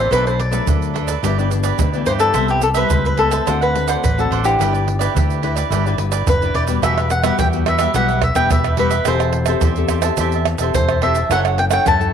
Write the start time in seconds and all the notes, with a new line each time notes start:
Already playing: C5
0.00 G4 B4
0.10 B1 B2 F#3 A3 D4 A4 B4 D5, pandeiro, shaker, surdo
0.25 A4 B4 C5 D5, pandeiro, shaker
0.40 D5, muted cavaquinho stroke, pandeiro
0.51 F#3 A3 D4 A4 B4 D5, pandeiro, shaker
0.66 D2 F#2 D4 A4 B4 D5, pandeiro, shaker, surdo
0.82 pandeiro, shaker
0.94 F#3 A3 D4 A4 B4 D5, pandeiro
1.07 A4 B4 D5, pandeiro, shaker
1.23 G1 G2 E3 B3 D4 E4 G4 B4 D5, pandeiro, shaker, surdo
1.38 E3 B3 D4 G4 B4 D5, pandeiro, shaker
1.50 E3 B3 D4, muted cavaquinho stroke, pandeiro, shaker
1.63 G4 B4 D5, pandeiro, shaker
1.79 D2 D3, pandeiro, shaker, surdo
1.93 E3 B3 D4 G4 B4 D5, pandeiro, shaker
2.06 G2 E4 G4 B4 C5 D5, pandeiro, shaker
2.18 G4 A4 B4 D5, pandeiro, shaker
2.34 C2 C3 G3 B3 E4 B4 C5 E5, pandeiro, shaker, surdo
2.48 G4 B4 C5 E5, pandeiro, shaker
2.61 A4, muted cavaquinho stroke, pandeiro, shaker
2.74 G3 B3 E4 B4 C5 E5, pandeiro, shaker
2.90 C#2 G2 E4 B4 C5 E5, pandeiro, shaker, surdo
3.05 B4, pandeiro, shaker
3.17 G3 B3 E4 A4 B4 C5 E5, pandeiro
3.31 A4 B4 C5 E5, pandeiro, shaker
3.46 D2 D3 A3 C4 D4 F#4 C5 D5 F#5, pandeiro, shaker, surdo
3.61 B4 C5 D5 F#5, pandeiro, shaker
3.74 A3 C4 F#4, muted cavaquinho stroke, pandeiro
3.88 C5 D5 F#5, pandeiro, shaker
4.04 A1 A2 B4, pandeiro, shaker, surdo
4.17 A3 C4 F#4 A4 C5 D5 F#5, pandeiro, shaker
4.31 A1 D4 C5 D5 F#5, pandeiro
4.44 D4 E4 G4 B4 C5 D5 F#5, pandeiro, shaker
4.59 G1 G3 E4 G4 B4 D5, pandeiro, shaker, surdo
4.73 G4 B4 D5, pandeiro, shaker
4.87 muted cavaquinho stroke, pandeiro
4.99 D4 E4 G4 B4 D5, pandeiro, shaker
5.15 D2 D3 E4 G4 B4 D5, pandeiro, shaker, surdo
5.30 pandeiro, shaker
5.42 D4 E4 G4 B4 D5, pandeiro
5.56 G4 B4 D5, pandeiro, shaker
5.70 G1 G3 E4 G4 B4 D5, pandeiro, shaker, surdo
5.86 D4 E4 G4 B4 D5, pandeiro, shaker
5.98 G1 D4 E4 B4, muted cavaquinho stroke, pandeiro
6.11 G4 B4 D5, pandeiro, shaker
6.26 F#1 D3 B4, pandeiro, shaker, surdo
6.42 D4 E4 G4 B4 D5, pandeiro, shaker
6.54 E1 E4 G4 B4 D5, pandeiro
6.67 G3 B3 F#4 G4 B4 D5, pandeiro, shaker
6.82 E1 E3 F#4 G4 B4 E5, pandeiro, tamborim, shaker, surdo
6.97 G4 B4 E5, pandeiro, tamborim, shaker
7.10 F#5, muted cavaquinho stroke, pandeiro, shaker
7.23 G3 B3 F#4 G4 B4 E5 F#5, pandeiro, tamborim, shaker
7.38 E2 B2 F#4 G4 B4 E5 G5, pandeiro, shaker, surdo
7.53 G3 B3 F#4, pandeiro, shaker
7.66 F#4 G4 B4 E5, pandeiro, tamborim
7.79 G3 B3 F#4 G4 B4 E5, pandeiro, tamborim, shaker
7.94 B1 E3 G3 B3 F#4 G4 B4 E5 F#5, pandeiro, shaker, surdo
8.08 G4 B4 E5, pandeiro, shaker
8.22 E5, muted cavaquinho stroke, pandeiro, tamborim, surdo
8.34 E1 G3 B3 F#4 G4 B4 E5 G5, pandeiro, shaker
8.50 E1 B2 E5, pandeiro, shaker, surdo
8.64 G4 B4 E5, pandeiro, tamborim, shaker
8.77 G3 B3 F#4 G4 B4 E5, pandeiro
8.90 G4 B4 E5, pandeiro, shaker
9.05 E1 E3 C4 G4 A4 C5 E5 A5, pandeiro, tamborim, shaker, surdo
9.19 C5 E5 A5, pandeiro, tamborim, shaker
9.33 muted cavaquinho stroke, pandeiro
9.46 C4 G4 A4 C5 E5 A5, pandeiro, tamborim, shaker
9.61 E2 E3 G4 C5 E5, pandeiro, shaker, surdo
9.66 A5
9.76 C4 G4 A4, pandeiro, shaker
9.88 G4 C5 E5 A5, pandeiro, tamborim, shaker
10.02 C4 G4 A4 C5 E5 A5, pandeiro, tamborim, shaker
10.17 E2 E3 C4 G4 A4 C5 E5, pandeiro, shaker, surdo
10.21 A5
10.32 C5 E5 A5, pandeiro, shaker
10.45 muted cavaquinho stroke, pandeiro, tamborim
10.58 E1 C4 G4 A4 E5 A5, pandeiro, shaker
10.63 C5
10.74 E1 E3 C5, pandeiro, shaker, surdo
10.89 C5 E5 A5, pandeiro, tamborim, shaker
11.01 C4 G4 A4 C5 E5 A5, pandeiro
11.15 C5 E5 A5, pandeiro, shaker
11.29 F#1 F#3 C#4 E4 A4 C#5 F#5, pandeiro, tamborim, shaker, surdo
11.45 A4 C#5 F#5, pandeiro, tamborim, shaker
11.58 G5, muted cavaquinho stroke, pandeiro
11.70 C#4 E4 A4 C#5 F#5 G5, pandeiro, tamborim, shaker
11.85 F#2 C#3 E4 A4 C#5 F#5 A5, pandeiro, shaker, surdo
11.99 C#4 E4 A4, pandeiro, shaker